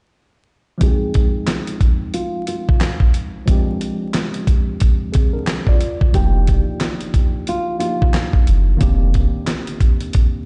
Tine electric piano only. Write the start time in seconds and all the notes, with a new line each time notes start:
0.78 F3 G#3 C4 D#4
0.83 G5
3.46 F3 G#3 C4
3.50 D4 G4
5.12 C4 G#4
5.33 D4 A#4
5.68 F4 D5
6.12 F3 A#3 D4
6.17 D#4 G4
7.78 F3 A#3 D4 D#4 G4
8.77 D#3 A#3 C4
8.81 D4 G4